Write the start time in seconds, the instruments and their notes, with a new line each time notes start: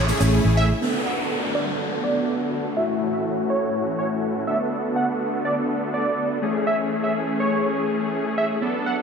Already playing: fingered electric bass A1, supersaw synth C#3 A3 E4 G#4
0.08 analog polysynth A3 C#4 E4 G#4, open hi-hat, tambourine, shaker
0.20 fingered electric bass A1, clean electric guitar C#4, shaker
0.45 fingered electric bass A1
0.57 digital synth lead E5
0.81 supersaw synth D3 A3 B3 F#4, analog polysynth B3 D4 A4, downlifter
1.06 digital synth lead F#5
1.55 digital synth lead D5
2.04 digital synth lead D5
2.76 supersaw synth A2 E3 C#4, analog polysynth A3 E4 F#4, digital synth lead E5
3.13 digital synth lead E5
3.50 digital synth lead C#5
3.99 digital synth lead C#5
4.47 supersaw synth D3 B3, analog polysynth B3 D4 A4, digital synth lead E5
4.96 digital synth lead F#5
5.45 digital synth lead D5
5.94 digital synth lead D5
6.42 supersaw synth E3 C#4 G#4, analog polysynth A3 C#4 G#4
6.67 digital synth lead E5
7.04 digital synth lead E5
7.40 digital synth lead C#5
8.38 digital synth lead E5
8.61 supersaw synth F#3 B3 D4 A4, analog polysynth B3 D4 A4
8.86 digital synth lead F#5